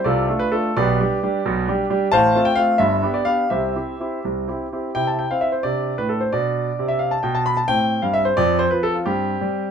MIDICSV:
0, 0, Header, 1, 2, 480
1, 0, Start_track
1, 0, Key_signature, 0, "major"
1, 0, Tempo, 471328
1, 777, Time_signature, 6, 3, 24, 8
1, 1247, Tempo, 452830
1, 3167, Tempo, 477327
1, 5567, Tempo, 452148
1, 8447, Tempo, 464037
1, 10075, End_track
2, 0, Start_track
2, 0, Title_t, "Grand piano"
2, 0, Program_c, 0, 0
2, 45, Note_on_c, 0, 74, 82
2, 53, Note_on_c, 0, 36, 58
2, 57, Note_on_c, 0, 48, 73
2, 58, Note_on_c, 0, 65, 72
2, 58, Note_on_c, 0, 69, 64
2, 264, Note_off_c, 0, 74, 0
2, 282, Note_off_c, 0, 65, 0
2, 284, Note_off_c, 0, 36, 0
2, 286, Note_off_c, 0, 48, 0
2, 290, Note_on_c, 0, 57, 53
2, 295, Note_on_c, 0, 62, 53
2, 298, Note_on_c, 0, 65, 56
2, 391, Note_off_c, 0, 69, 0
2, 401, Note_on_c, 0, 71, 84
2, 466, Note_off_c, 0, 57, 0
2, 469, Note_off_c, 0, 62, 0
2, 471, Note_off_c, 0, 65, 0
2, 526, Note_on_c, 0, 69, 77
2, 529, Note_off_c, 0, 71, 0
2, 530, Note_on_c, 0, 57, 51
2, 535, Note_on_c, 0, 62, 54
2, 539, Note_on_c, 0, 65, 60
2, 707, Note_off_c, 0, 57, 0
2, 710, Note_off_c, 0, 62, 0
2, 712, Note_off_c, 0, 65, 0
2, 749, Note_off_c, 0, 69, 0
2, 780, Note_on_c, 0, 74, 96
2, 781, Note_on_c, 0, 35, 63
2, 784, Note_on_c, 0, 47, 75
2, 787, Note_on_c, 0, 67, 70
2, 788, Note_on_c, 0, 71, 68
2, 1008, Note_off_c, 0, 67, 0
2, 1009, Note_off_c, 0, 35, 0
2, 1011, Note_off_c, 0, 47, 0
2, 1019, Note_on_c, 0, 55, 60
2, 1022, Note_on_c, 0, 62, 59
2, 1023, Note_on_c, 0, 67, 68
2, 1184, Note_off_c, 0, 55, 0
2, 1186, Note_off_c, 0, 62, 0
2, 1187, Note_off_c, 0, 67, 0
2, 1255, Note_on_c, 0, 55, 59
2, 1258, Note_on_c, 0, 62, 62
2, 1259, Note_on_c, 0, 67, 62
2, 1423, Note_off_c, 0, 55, 0
2, 1425, Note_off_c, 0, 62, 0
2, 1425, Note_off_c, 0, 67, 0
2, 1491, Note_on_c, 0, 47, 71
2, 1492, Note_on_c, 0, 35, 73
2, 1717, Note_off_c, 0, 47, 0
2, 1718, Note_off_c, 0, 35, 0
2, 1731, Note_on_c, 0, 55, 65
2, 1735, Note_on_c, 0, 62, 58
2, 1739, Note_on_c, 0, 67, 71
2, 1899, Note_off_c, 0, 55, 0
2, 1901, Note_off_c, 0, 62, 0
2, 1904, Note_off_c, 0, 67, 0
2, 1917, Note_off_c, 0, 74, 0
2, 1922, Note_off_c, 0, 71, 0
2, 1964, Note_on_c, 0, 62, 64
2, 1965, Note_on_c, 0, 55, 70
2, 1969, Note_on_c, 0, 67, 76
2, 2133, Note_off_c, 0, 55, 0
2, 2133, Note_off_c, 0, 62, 0
2, 2136, Note_off_c, 0, 67, 0
2, 2192, Note_on_c, 0, 81, 115
2, 2201, Note_on_c, 0, 33, 72
2, 2204, Note_on_c, 0, 45, 88
2, 2204, Note_on_c, 0, 77, 91
2, 2208, Note_on_c, 0, 72, 87
2, 2429, Note_off_c, 0, 33, 0
2, 2430, Note_off_c, 0, 45, 0
2, 2437, Note_on_c, 0, 57, 61
2, 2440, Note_on_c, 0, 60, 62
2, 2444, Note_on_c, 0, 65, 65
2, 2532, Note_off_c, 0, 77, 0
2, 2534, Note_off_c, 0, 72, 0
2, 2548, Note_on_c, 0, 79, 95
2, 2550, Note_off_c, 0, 81, 0
2, 2608, Note_off_c, 0, 57, 0
2, 2610, Note_off_c, 0, 60, 0
2, 2613, Note_off_c, 0, 65, 0
2, 2657, Note_on_c, 0, 77, 97
2, 2671, Note_off_c, 0, 79, 0
2, 2673, Note_on_c, 0, 57, 56
2, 2674, Note_on_c, 0, 60, 54
2, 2680, Note_on_c, 0, 65, 62
2, 2850, Note_off_c, 0, 57, 0
2, 2850, Note_off_c, 0, 60, 0
2, 2854, Note_off_c, 0, 65, 0
2, 2898, Note_on_c, 0, 76, 95
2, 2910, Note_off_c, 0, 77, 0
2, 2910, Note_on_c, 0, 43, 78
2, 2913, Note_on_c, 0, 31, 68
2, 3156, Note_off_c, 0, 43, 0
2, 3157, Note_off_c, 0, 31, 0
2, 3158, Note_on_c, 0, 59, 53
2, 3163, Note_on_c, 0, 62, 54
2, 3173, Note_on_c, 0, 67, 56
2, 3270, Note_on_c, 0, 74, 76
2, 3277, Note_off_c, 0, 76, 0
2, 3333, Note_off_c, 0, 59, 0
2, 3336, Note_off_c, 0, 62, 0
2, 3343, Note_off_c, 0, 67, 0
2, 3382, Note_on_c, 0, 77, 93
2, 3388, Note_on_c, 0, 59, 50
2, 3393, Note_on_c, 0, 62, 50
2, 3397, Note_off_c, 0, 74, 0
2, 3399, Note_on_c, 0, 67, 54
2, 3567, Note_off_c, 0, 59, 0
2, 3570, Note_off_c, 0, 62, 0
2, 3574, Note_off_c, 0, 67, 0
2, 3609, Note_off_c, 0, 77, 0
2, 3635, Note_on_c, 0, 76, 70
2, 3640, Note_on_c, 0, 48, 56
2, 3643, Note_on_c, 0, 36, 53
2, 3644, Note_on_c, 0, 72, 53
2, 3646, Note_on_c, 0, 67, 52
2, 3878, Note_off_c, 0, 48, 0
2, 3879, Note_off_c, 0, 36, 0
2, 3884, Note_off_c, 0, 67, 0
2, 3893, Note_on_c, 0, 60, 49
2, 3895, Note_on_c, 0, 64, 42
2, 3899, Note_on_c, 0, 67, 49
2, 4067, Note_off_c, 0, 60, 0
2, 4068, Note_off_c, 0, 64, 0
2, 4071, Note_off_c, 0, 67, 0
2, 4137, Note_on_c, 0, 60, 39
2, 4141, Note_on_c, 0, 64, 44
2, 4145, Note_on_c, 0, 67, 45
2, 4310, Note_off_c, 0, 60, 0
2, 4312, Note_off_c, 0, 64, 0
2, 4315, Note_off_c, 0, 67, 0
2, 4334, Note_off_c, 0, 72, 0
2, 4369, Note_off_c, 0, 76, 0
2, 4382, Note_on_c, 0, 48, 50
2, 4385, Note_on_c, 0, 36, 50
2, 4612, Note_off_c, 0, 48, 0
2, 4614, Note_off_c, 0, 36, 0
2, 4617, Note_on_c, 0, 60, 40
2, 4626, Note_on_c, 0, 64, 44
2, 4628, Note_on_c, 0, 67, 43
2, 4792, Note_off_c, 0, 60, 0
2, 4797, Note_off_c, 0, 64, 0
2, 4798, Note_off_c, 0, 67, 0
2, 4866, Note_on_c, 0, 60, 44
2, 4867, Note_on_c, 0, 64, 41
2, 4874, Note_on_c, 0, 67, 48
2, 5037, Note_off_c, 0, 60, 0
2, 5038, Note_off_c, 0, 64, 0
2, 5042, Note_off_c, 0, 67, 0
2, 5091, Note_on_c, 0, 79, 87
2, 5095, Note_on_c, 0, 48, 60
2, 5097, Note_on_c, 0, 64, 41
2, 5213, Note_off_c, 0, 79, 0
2, 5216, Note_on_c, 0, 81, 64
2, 5331, Note_on_c, 0, 79, 69
2, 5334, Note_off_c, 0, 81, 0
2, 5378, Note_off_c, 0, 48, 0
2, 5449, Note_off_c, 0, 79, 0
2, 5451, Note_on_c, 0, 77, 76
2, 5454, Note_on_c, 0, 60, 54
2, 5554, Note_on_c, 0, 76, 71
2, 5567, Note_off_c, 0, 77, 0
2, 5671, Note_on_c, 0, 72, 61
2, 5681, Note_off_c, 0, 76, 0
2, 5737, Note_off_c, 0, 60, 0
2, 5764, Note_off_c, 0, 64, 0
2, 5789, Note_on_c, 0, 74, 82
2, 5800, Note_off_c, 0, 72, 0
2, 5801, Note_on_c, 0, 62, 41
2, 5802, Note_on_c, 0, 48, 63
2, 6092, Note_off_c, 0, 48, 0
2, 6158, Note_off_c, 0, 74, 0
2, 6160, Note_on_c, 0, 71, 77
2, 6163, Note_on_c, 0, 45, 58
2, 6276, Note_on_c, 0, 69, 66
2, 6283, Note_off_c, 0, 71, 0
2, 6396, Note_on_c, 0, 72, 63
2, 6402, Note_off_c, 0, 69, 0
2, 6453, Note_off_c, 0, 45, 0
2, 6482, Note_off_c, 0, 62, 0
2, 6522, Note_off_c, 0, 72, 0
2, 6525, Note_on_c, 0, 74, 81
2, 6531, Note_on_c, 0, 62, 44
2, 6532, Note_on_c, 0, 47, 57
2, 6915, Note_off_c, 0, 47, 0
2, 7020, Note_on_c, 0, 48, 58
2, 7119, Note_on_c, 0, 76, 75
2, 7128, Note_off_c, 0, 74, 0
2, 7231, Note_on_c, 0, 77, 68
2, 7244, Note_off_c, 0, 76, 0
2, 7360, Note_off_c, 0, 77, 0
2, 7361, Note_on_c, 0, 81, 72
2, 7399, Note_off_c, 0, 48, 0
2, 7485, Note_off_c, 0, 81, 0
2, 7485, Note_on_c, 0, 79, 70
2, 7492, Note_on_c, 0, 47, 67
2, 7606, Note_off_c, 0, 79, 0
2, 7609, Note_on_c, 0, 81, 79
2, 7727, Note_on_c, 0, 83, 84
2, 7728, Note_off_c, 0, 81, 0
2, 7845, Note_on_c, 0, 81, 76
2, 7846, Note_off_c, 0, 83, 0
2, 7872, Note_off_c, 0, 47, 0
2, 7925, Note_off_c, 0, 62, 0
2, 7962, Note_on_c, 0, 79, 109
2, 7965, Note_off_c, 0, 81, 0
2, 7971, Note_on_c, 0, 60, 52
2, 7972, Note_on_c, 0, 45, 69
2, 8258, Note_off_c, 0, 45, 0
2, 8324, Note_off_c, 0, 79, 0
2, 8327, Note_on_c, 0, 77, 75
2, 8335, Note_on_c, 0, 43, 68
2, 8447, Note_off_c, 0, 77, 0
2, 8447, Note_on_c, 0, 76, 91
2, 8564, Note_off_c, 0, 76, 0
2, 8565, Note_on_c, 0, 72, 82
2, 8616, Note_off_c, 0, 43, 0
2, 8643, Note_off_c, 0, 60, 0
2, 8682, Note_off_c, 0, 72, 0
2, 8688, Note_on_c, 0, 74, 103
2, 8696, Note_on_c, 0, 41, 78
2, 8698, Note_on_c, 0, 60, 56
2, 8900, Note_off_c, 0, 74, 0
2, 8917, Note_on_c, 0, 72, 98
2, 8977, Note_off_c, 0, 41, 0
2, 9038, Note_on_c, 0, 71, 73
2, 9039, Note_off_c, 0, 72, 0
2, 9052, Note_on_c, 0, 53, 64
2, 9160, Note_off_c, 0, 71, 0
2, 9167, Note_on_c, 0, 69, 90
2, 9284, Note_off_c, 0, 69, 0
2, 9286, Note_on_c, 0, 65, 62
2, 9337, Note_off_c, 0, 53, 0
2, 9369, Note_off_c, 0, 60, 0
2, 9399, Note_on_c, 0, 67, 84
2, 9403, Note_on_c, 0, 60, 48
2, 9405, Note_off_c, 0, 65, 0
2, 9407, Note_on_c, 0, 43, 64
2, 9694, Note_off_c, 0, 43, 0
2, 9769, Note_on_c, 0, 55, 62
2, 10058, Note_off_c, 0, 55, 0
2, 10075, Note_off_c, 0, 60, 0
2, 10075, Note_off_c, 0, 67, 0
2, 10075, End_track
0, 0, End_of_file